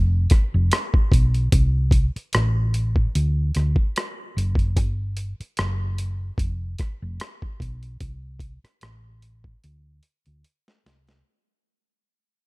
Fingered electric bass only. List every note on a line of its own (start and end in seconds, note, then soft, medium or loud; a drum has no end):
0.00 0.26 F1 medium
0.54 0.70 F1 medium
1.12 1.48 B1 medium
1.53 2.08 C2 medium
2.16 muted fingered electric bass stroke soft
2.35 3.05 A1 medium
3.15 3.51 D2 medium
3.56 3.75 D2 medium
4.37 4.77 F#1 medium
4.77 5.32 G1 medium
5.40 muted fingered electric bass stroke soft
5.59 6.30 F#1 medium
6.39 6.74 F1 medium
7.02 7.18 F1 medium
7.61 7.96 B1 medium
8.01 8.56 C2 medium
8.64 muted fingered electric bass stroke soft
8.83 9.54 A1 medium
9.64 9.99 D2 medium
10.27 10.42 D2 medium
10.86 11.21 C2 medium